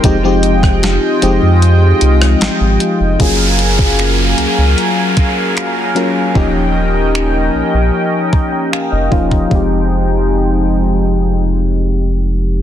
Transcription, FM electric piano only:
\new Staff \with { instrumentName = "FM electric piano" } { \time 4/4 \key f \minor \tempo 4 = 76 << { r1 | r1 | r2 r8 bes''16 g''16 f''16 ees''8. | r1 | } \\ { <f aes c' ees' g'>16 <f aes c' ees' g'>8. r8 <f aes c' ees' g'>4~ <f aes c' ees' g'>16 r4 r16 | <ges bes des' f' aes'>4~ <ges bes des' f' aes'>16 r2 r16 <ges bes des' f' bes'>16 r16 | <f bes des' ees' g'>4~ <f bes des' ees' g'>16 r2 r16 <f bes des' ees' f'>16 r16 | <f aes c' ees' g'>1 | } >> }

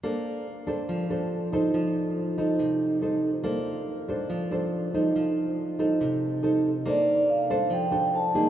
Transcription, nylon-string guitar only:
\new Staff \with { instrumentName = "Nylon-string guitar" } { \time 4/4 \key bes \major \tempo 4 = 141 << { <d' a' c''>4 r8 <d' a' c''>4 <d' a' c''>4 <ees' a' c''>8~ | <ees' a' c''>4. <ees' a' c''>4. <ees' a' c''>8 r8 | <d' a' c''>4 r8 <d' a' c''>4 <d' a' c''>4 <ees' a' c''>8~ | <ees' a' c''>4. <ees' a' c''>4. <ees' a' c''>8 r8 |
<d' a' c''>4. <d' a' c''>4 <d' a' c''>4 <bes ees' aes'>8 | } \\ { bes2 f2 | f2 c2 | bes2 f2 | f2 c2 |
bes2 f2 | } >> }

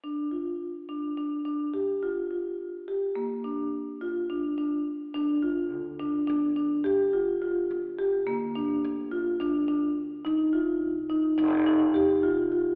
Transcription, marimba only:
\new Staff \with { instrumentName = "Marimba" } { \time 9/8 \key g \minor \tempo 4. = 71 d'8 f'4 d'8 d'8 d'8 g'8 f'8 f'8~ | f'8 g'8 bes8 d'4 f'8 d'8 d'4 | d'8 f'4 d'8 d'8 d'8 g'8 f'8 f'8~ | f'8 g'8 bes8 d'4 f'8 d'8 d'4 |
ees'8 f'4 ees'8 ees'8 ees'8 g'8 f'8 f'8 | }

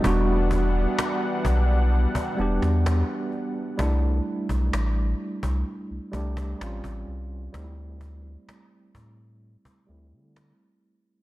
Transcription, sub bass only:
\new Staff \with { instrumentName = "Sub bass" } { \clef bass \time 4/4 \key e \minor \tempo 4 = 64 e,,4 r8 b,,8. r16 e,,16 e,8 r8. | c,8 r16 b,,16 a,,8 r16 c,16 r16 c,16 c,8 a,,16 a,,16 bis,,8 | d,4 r8 a,8. r16 d,16 d8 r8. | }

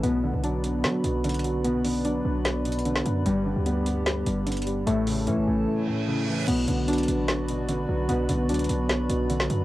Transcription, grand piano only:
\new Staff \with { instrumentName = "Grand piano" } { \clef bass \time 4/4 \key b \minor \tempo 4 = 149 b,8 d8 fis8 b4 b,8 d8 fis8 | b,8 d8 fis8 b4 b,8 d8 fis8 | g,8 d8 g8 b4 g,8 d8 g8 | a,8 cis8 e8 a4 a,8 cis8 e8 |
b,8 d8 fis8 b4 b,8 d8 fis8 | b,8 d8 fis8 b4 b,8 d8 fis8 | }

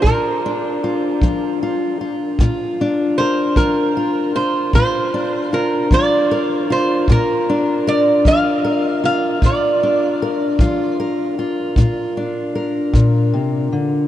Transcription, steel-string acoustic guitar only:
\new Staff \with { instrumentName = "Steel-string acoustic guitar" } { \time 12/8 \key bes \major \tempo 4. = 51 << { f'8 d'8 f'8 f'8 f'8 f'8 f'8 d'8 bes'8 f'8 f'8 f'8 | f'8 d'8 f'8 f'8 bes'8 f'8 f'8 d'8 bes'8 f'8 bes'8 f'8 | f'8 d'8 bes'8 f'8 bes'8 f'8 f'8 d'8 bes'2 | } \\ { bes,4 r8 f4 r8 bes,4 r8 f4 r8 | bes,4 r8 f4 r8 bes,4 r8 f4 r8 | bes,4 r8 f4 r8 bes,4 r8 bes,8 c8 d8 | } >> }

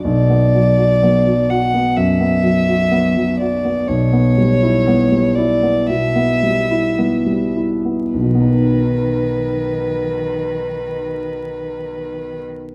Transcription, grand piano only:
\new Staff \with { instrumentName = "Grand piano" } { \time 4/4 \key e \dorian \tempo 4 = 57 b,,16 b16 fis16 fis'16 b16 fis16 fis'16 b16 fis,16 b16 fis16 fis'16 b16 fis16 fis'16 b16 | b,,16 b16 g16 e'16 b16 g16 e'16 b16 b,16 b16 g16 e'16 b16 g16 e'16 b16 | <b,, b, fis b dis' b'>1 | }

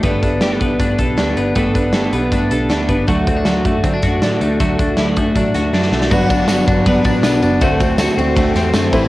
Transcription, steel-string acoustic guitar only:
\new Staff \with { instrumentName = "Steel-string acoustic guitar" } { \time 4/4 \key g \major \tempo 4 = 158 <g a d' g' b'>8 <d' g' b'>8 <g a d' g' b'>8 <d' g' b'>8 <a d' g' b'>8 <d' g' b'>8 <g a d' g' b'>8 <d' g' b'>8 | <g a d' g' b'>8 <d' g' b'>8 <g a d' g' b'>8 <d' g' b'>8 <a d' g' b'>8 <d' g' b'>8 <g a d' g' b'>8 <d' g' b'>8 | <d fis a d' fis'>8 <a d' fis'>8 <d fis a d' fis'>8 <a d' fis'>8 <fis a d' fis'>8 <a d' fis'>8 <d fis a d' fis'>8 <a d' fis'>8 | <d fis a d' fis'>8 <a d' fis'>8 <d fis a d' fis'>8 <a d' fis'>8 <fis a d' fis'>8 <a d' fis'>8 <d fis a d' fis'>8 <a d' fis'>8 |
<g b d' fis'>8 <b d' fis'>8 <g b d' fis'>8 <b d' fis'>8 <g b d' fis'>8 <b d' fis'>8 <g b d' fis'>8 <b d' fis'>8 | <d a c' fis'>8 <a c' fis'>8 <d a c' fis'>8 <a c' fis'>8 <d a c' fis'>8 <a c' fis'>8 <d a c' fis'>8 <g c' e'>8 | }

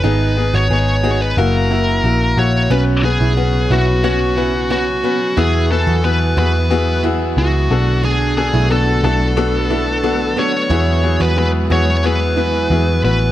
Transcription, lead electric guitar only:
\new Staff \with { instrumentName = "Lead electric guitar" } { \time 4/4 \key fis \dorian \tempo 4 = 90 b'8. cis''4 b'16 ais'4. cis''8 | \key b \dorian b'8 gis'4 fis'8 fis'4 fis'4 | gis'8 a'8 b'8 b'4 r8 fis'4 | gis'8 gis'8 a'8 a'2 cis''8~ |
cis''8. b'16 b'8 cis''8 b'4. b'8 | }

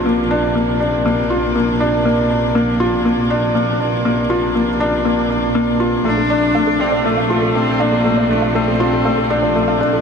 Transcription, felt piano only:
\new Staff \with { instrumentName = "Felt piano" } { \time 4/4 \key bes \major \tempo 4 = 120 bes8 d'8 bes8 d'8 bes8 f'8 bes8 d'8 | bes8 d'8 bes8 f'8 bes8 d'8 bes8 d'8 | bes8 f'8 bes8 d'8 bes8 d'8 bes8 f'8 | a8 d'8 a8 d'8 a8 f'8 a8 d'8 |
a8 d'8 a8 f'8 a8 d'8 a8 d'8 | }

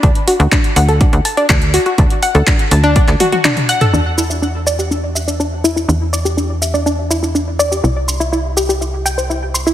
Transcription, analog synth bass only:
\new Staff \with { instrumentName = "Analog synth bass" } { \clef bass \time 4/4 \key e \minor \tempo 4 = 123 d,16 r8 d,16 r8 d,8 r16 d,16 r8 d,8 r8 | d,16 r8 d,16 r8 d,8 r16 d,16 r4. | e,1 | e,1 |
c,1 | }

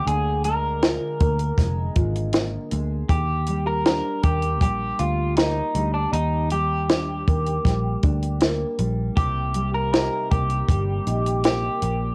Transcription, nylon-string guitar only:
\new Staff \with { instrumentName = "Nylon-string guitar" } { \time 4/4 \key ees \major \tempo 4 = 79 d8 aes8 f'8 bes8 aes8 f'8 bes8 aes8 | r8 g8 d'8 bes8 g4 bes8 g8~ | g8 g8 d'8 bes8 g8 d'8 bes8 g8 | c8 g8 ees'8 bes8 g8 ees'8 bes8 bes,8 | }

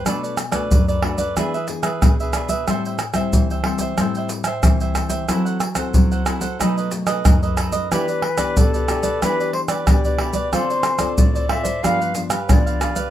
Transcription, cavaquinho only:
\new Staff \with { instrumentName = "Cavaquinho" } { \time 4/4 \key e \phrygian \tempo 4 = 92 <d' a' b' d''>16 <a' b' d''>16 r16 <a' b' d''>8 <a' b' d''>16 <d' a' b' d''>16 <a' b' d''>16 <d' gis' b' e''>16 <gis' b' e''>16 r16 <gis' b' e''>8 <gis' b' e''>16 <d' gis' b' e''>16 <gis' b' e''>16 | <a' c'' e'' g''>16 <c'' e'' g''>16 r16 <c'' e'' g''>8 <c'' e'' g''>16 <a' c'' e'' g''>16 <c'' e'' g''>16 <a' c'' e'' g''>16 <c'' e'' g''>16 r16 <c'' e'' g''>8 <c'' e'' g''>16 <a' c'' e'' g''>16 <c'' e'' g''>16 | <e' a' c'' fis''>16 <a' c'' fis''>16 r16 <a' c'' fis''>8 <a' c'' fis''>16 <e' a' c'' fis''>16 <a' c'' fis''>16 <dis' a' b' dis''>16 <a' b' dis''>16 r16 <a' b' dis''>8 <a' b' dis''>16 <dis' a' b' dis''>16 <a' b' dis''>16 | <e' g' b' d''>16 <g' b' d''>16 r16 <g' b' d''>8 <g' b' d''>16 <e' g' b' d''>16 <g' b' d''>16 <e' g' b' d''>16 <g' b' d''>16 r16 <g' b' d''>8 <g' b' d''>16 <e' g' b' d''>16 <g' b' d''>16 |
<f' a' c'' d''>16 <a' c'' d''>16 r16 <a' c'' d''>8 <a' c'' d''>16 <f' a' c'' d''>16 <a' c'' d''>16 <d' g' b' f''>16 <g' b' f''>16 r16 <g' b' f''>8 <g' b' f''>16 <d' g' b' f''>16 <g' b' f''>16 | }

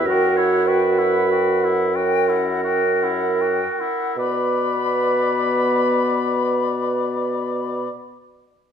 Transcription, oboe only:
\new Staff \with { instrumentName = "Oboe" } { \time 6/8 \key b \minor \tempo 4. = 26 fis'16 e'16 fis'16 e'16 fis'16 e'16 fis'16 e'16 fis'16 e'16 fis'16 e'16 | d''2. | }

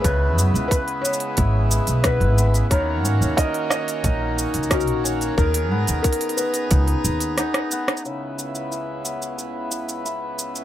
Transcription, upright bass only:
\new Staff \with { instrumentName = "Upright bass" } { \clef bass \time 4/4 \key cis \dorian \tempo 4 = 90 cis,8 fis,16 cis,16 r4 gis,,8 r16 b,,8 gis,,8 r16 | dis,8 gis,16 dis,16 r4 ais,,8 r16 cis,8 ais,,8 r16 | dis,8 gis,16 dis,16 r4 cis,16 r16 dis,8 r4 | r1 | }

